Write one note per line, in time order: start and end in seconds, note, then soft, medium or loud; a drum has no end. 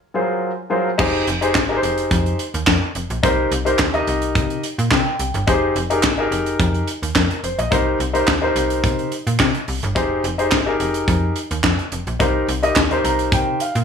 0.14 0.50 F#3 medium
0.14 0.50 F4 medium
0.14 0.50 G#4 medium
0.14 0.50 A#4 medium
0.14 0.50 C5 medium
0.70 0.89 F#3 medium
0.70 0.89 F4 medium
0.70 0.89 G#4 medium
0.70 0.89 A#4 medium
0.70 0.89 C5 medium
0.98 1.23 F1 loud
0.98 1.25 D#4 loud
0.98 1.25 G4 medium
0.98 1.25 G#4 medium
0.98 1.25 C5 medium
0.98 kick loud
0.98 crash loud
1.27 1.57 F1 loud
1.27 closed hi-hat medium
1.41 1.58 D#4 medium
1.41 1.58 G4 medium
1.41 1.59 G#4 medium
1.41 1.59 C5 medium
1.41 closed hi-hat medium
1.55 1.79 G#1 loud
1.55 kick loud
1.55 snare loud
1.55 clap medium
1.55 clap loud
1.69 2.39 D#4 medium
1.69 2.39 G4 medium
1.69 2.39 G#4 medium
1.69 1.76 A#4 medium
1.76 2.42 C5 loud
1.83 2.07 F1 medium
1.83 closed hi-hat medium
1.98 closed hi-hat medium
2.11 2.35 F2 loud
2.11 kick loud
2.11 closed hi-hat medium
2.26 closed hi-hat soft
2.39 closed hi-hat medium
2.54 2.65 D#2 medium
2.54 closed hi-hat medium
2.67 2.80 F2 medium
2.67 kick loud
2.67 snare loud
2.67 clap medium
2.95 3.08 F1 medium
2.95 closed hi-hat medium
3.10 3.21 A#1 medium
3.10 closed hi-hat soft
3.23 3.47 C2 loud
3.23 3.49 D#4 medium
3.23 3.49 G4 medium
3.23 3.50 A#4 medium
3.23 3.50 C5 loud
3.23 kick loud
3.23 closed hi-hat medium
3.52 3.75 C2 medium
3.52 closed hi-hat medium
3.65 3.82 D#4 medium
3.65 3.83 G4 medium
3.65 3.83 A#4 medium
3.65 3.83 C5 medium
3.65 closed hi-hat medium
3.79 4.03 D#2 loud
3.79 kick loud
3.79 snare loud
3.79 clap medium
3.94 4.63 D#4 medium
3.94 4.63 G4 medium
3.94 4.63 A#4 medium
3.94 4.63 D#5 loud
3.94 closed hi-hat soft
4.07 4.37 C2 medium
4.07 closed hi-hat medium
4.22 closed hi-hat medium
4.35 4.59 C3 loud
4.35 kick loud
4.35 closed hi-hat medium
4.50 closed hi-hat soft
4.63 closed hi-hat medium
4.78 4.89 A#2 medium
4.78 closed hi-hat medium
4.91 5.04 C3 loud
4.91 5.44 G5 medium
4.91 kick loud
4.91 snare loud
4.91 clap medium
5.19 5.32 C2 medium
5.19 closed hi-hat medium
5.34 5.45 G1 loud
5.34 closed hi-hat soft
5.47 5.71 F1 loud
5.47 5.74 D#4 medium
5.47 5.74 G4 medium
5.47 5.74 G#4 medium
5.47 5.74 C5 loud
5.47 kick loud
5.47 closed hi-hat medium
5.76 6.05 F1 loud
5.76 closed hi-hat medium
5.90 6.07 D#4 medium
5.90 6.07 G4 medium
5.90 6.07 G#4 medium
5.90 6.07 A#4 medium
5.90 closed hi-hat medium
6.03 6.27 G#1 loud
6.03 kick loud
6.03 snare loud
6.03 clap loud
6.18 6.87 D#4 medium
6.18 6.87 G4 medium
6.18 6.87 G#4 medium
6.18 6.88 A#4 loud
6.31 6.55 F1 medium
6.31 closed hi-hat medium
6.46 closed hi-hat medium
6.60 6.83 F2 loud
6.60 kick loud
6.60 closed hi-hat medium
6.74 closed hi-hat soft
6.88 closed hi-hat medium
7.03 7.14 D#2 medium
7.03 closed hi-hat medium
7.15 7.28 F2 loud
7.15 7.42 A#4 medium
7.15 kick loud
7.15 snare loud
7.15 clap medium
7.31 closed hi-hat soft
7.44 7.56 F1 medium
7.44 7.58 C5 medium
7.44 closed hi-hat medium
7.58 7.70 A#1 loud
7.58 7.85 D#5 medium
7.58 closed hi-hat medium
7.71 7.95 C2 loud
7.71 7.98 D#4 medium
7.71 7.98 G4 medium
7.71 7.98 A#4 medium
7.71 7.98 C5 loud
7.71 kick loud
7.71 closed hi-hat loud
8.00 8.23 C2 medium
8.00 closed hi-hat medium
8.13 8.31 D#4 medium
8.13 8.31 G4 medium
8.13 8.31 A#4 medium
8.13 8.31 C5 loud
8.13 closed hi-hat medium
8.27 8.51 D#2 medium
8.27 kick loud
8.27 snare loud
8.27 clap medium
8.42 9.11 D#4 medium
8.42 9.11 G4 medium
8.42 9.11 A#4 medium
8.42 9.12 C5 loud
8.56 8.85 C2 loud
8.56 closed hi-hat medium
8.70 closed hi-hat medium
8.84 9.07 C3 loud
8.84 kick loud
8.84 closed hi-hat medium
8.99 closed hi-hat soft
9.12 closed hi-hat medium
9.27 9.38 A#2 medium
9.27 closed hi-hat medium
9.39 9.52 C3 loud
9.39 kick loud
9.39 snare loud
9.39 clap medium
9.55 closed hi-hat soft
9.68 9.81 C2 medium
9.68 open hi-hat medium
9.83 9.94 G1 loud
9.83 closed hi-hat medium
9.95 10.20 F1 loud
9.95 10.22 D#4 medium
9.95 10.22 G4 medium
9.95 10.22 G#4 medium
9.95 10.22 C5 loud
9.95 kick loud
9.95 closed hi-hat loud
10.24 10.53 F1 loud
10.24 closed hi-hat medium
10.38 10.55 D#4 medium
10.38 10.56 G4 medium
10.38 10.56 G#4 medium
10.38 10.56 C5 medium
10.38 closed hi-hat medium
10.51 10.76 G#1 loud
10.51 kick loud
10.51 snare loud
10.51 clap medium
10.66 11.36 D#4 medium
10.66 11.36 G4 medium
10.66 11.36 G#4 medium
10.66 11.36 A#4 loud
10.80 11.04 F1 medium
10.80 closed hi-hat medium
10.94 closed hi-hat medium
11.08 11.31 F2 loud
11.08 kick loud
11.08 closed hi-hat medium
11.36 closed hi-hat medium
11.51 11.62 D#2 medium
11.51 closed hi-hat medium
11.64 11.77 F2 loud
11.64 kick loud
11.64 snare loud
11.64 clap medium
11.79 closed hi-hat soft
11.92 12.05 F1 medium
11.92 closed hi-hat medium
12.07 12.18 A#1 medium
12.07 closed hi-hat soft
12.19 12.44 C2 loud
12.19 12.46 D#4 medium
12.19 12.46 G4 medium
12.19 12.47 A#4 medium
12.19 12.47 C5 medium
12.19 kick loud
12.19 closed hi-hat medium
12.48 12.72 C2 medium
12.48 closed hi-hat medium
12.62 12.80 D#4 medium
12.62 12.80 G4 medium
12.62 12.80 A#4 medium
12.62 12.80 D#5 medium
12.62 closed hi-hat medium
12.76 13.00 D#2 loud
12.76 kick loud
12.76 snare loud
12.76 clap loud
12.91 13.60 D#4 medium
12.91 13.60 G4 medium
12.91 13.60 A#4 medium
12.91 13.61 C5 loud
12.91 closed hi-hat soft
13.04 13.34 C2 medium
13.04 13.31 A#5 medium
13.04 closed hi-hat medium
13.19 closed hi-hat medium
13.32 13.56 C3 loud
13.32 13.59 G5 medium
13.32 kick loud
13.32 closed hi-hat medium
13.60 13.84 F5 medium
13.60 closed hi-hat medium
13.75 13.84 A#2 medium
13.75 closed hi-hat medium